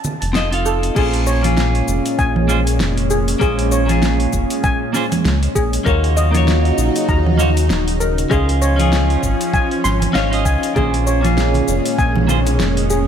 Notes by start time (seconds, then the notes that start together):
0.04 high conga, shaker
0.22 F1, open hi-hat, shaker
0.33 C4 D#4 F4 A4 D#5, snare, shaker
0.51 C4 D#4 F4 A4 F5, open hi-hat, shaker
0.66 A4, shaker
0.83 open hi-hat, shaker
0.95 A#1 A#2 G#3 A#3 C#4 F4 G#4 C5, kick, crash, shaker
1.13 open hi-hat
1.27 C#5, shaker
1.41 A#3 C#4 F4, open hi-hat, low conga, shaker
1.46 G#4
1.57 snare, shaker
1.75 open hi-hat
1.88 F1, shaker
2.06 open hi-hat, shaker
2.19 A#1 G#5, kick, shaker
2.36 low conga
2.48 A#3 C#4 F4 G#4 C5, shaker
2.67 open hi-hat, shaker
2.80 F1, snare, shaker
2.98 open hi-hat
3.10 G#4, shaker
3.28 open hi-hat, shaker
3.40 A#1 A#3 C#4 F4 G#4 C5, kick, shaker
3.59 open hi-hat
3.72 C#5, shaker
3.86 A#3 C#4 F4, open hi-hat, low conga, shaker
3.91 G#4
4.02 snare, shaker
4.20 open hi-hat
4.33 F1, kick, shaker
4.50 open hi-hat, shaker
4.64 G#5, kick, shaker
4.93 A#3 C#4 F4 G#4 C5, snare, shaker
5.12 open hi-hat, low conga, shaker
5.25 C#2, snare, shaker
5.43 open hi-hat
5.55 A#1 G#4, kick, shaker
5.73 open hi-hat, shaker
5.85 D#2 C#3 F#3 A#3 D#4 F4 F#4 A#4 C#5, kick, shaker
6.04 open hi-hat
6.17 D#5, shaker
6.31 A#3 D#4 F4, open hi-hat, low conga, shaker
6.36 F#4 C#5
6.48 snare, shaker
6.65 open hi-hat
6.78 A#1, shaker
6.96 open hi-hat, shaker
7.09 D#2 A#5, kick, shaker
7.26 low conga
7.38 A#3 D#4 F4 F#4 C#5, shaker
7.57 open hi-hat, shaker
7.70 D#1, snare, shaker
7.88 open hi-hat
8.00 A#4, shaker
8.18 open hi-hat, shaker
8.30 C#2 F3 C#4 D#4 F4 G#4 C5, kick, shaker
8.49 open hi-hat
8.62 C#5, shaker
8.76 C#4 D#4 F4, open hi-hat, low conga, shaker
8.81 G#4
8.93 snare, shaker
9.10 open hi-hat
9.23 G#1, kick, shaker
9.41 open hi-hat, shaker
9.54 G#5, kick, shaker
9.71 open hi-hat
9.84 G#1 C6, snare, shaker
10.02 open hi-hat, low conga, shaker
10.13 G#1 C#4 D#4 F4 G#4 C#5 F5, snare, shaker
10.31 C#4 D#4 F4 G#4 D#5, open hi-hat
10.45 C#2 G#5, kick, shaker
10.63 open hi-hat, shaker
10.74 A#1 A#2 G#3 A#3 C#4 F4 G#4 C5, kick, high conga, shaker
10.94 open hi-hat
11.07 C#5, shaker
11.21 A#3 C#4 F4, open hi-hat, low conga, shaker
11.26 G#4
11.38 snare, shaker
11.54 open hi-hat, high conga
11.68 F1, shaker
11.86 open hi-hat, shaker
11.98 A#1 G#5, kick, shaker
12.16 low conga
12.27 A#3 C#4 F4 G#4 C5, high conga, shaker
12.47 open hi-hat, low conga, shaker
12.60 F1, snare, shaker
12.77 open hi-hat
12.90 G#4, shaker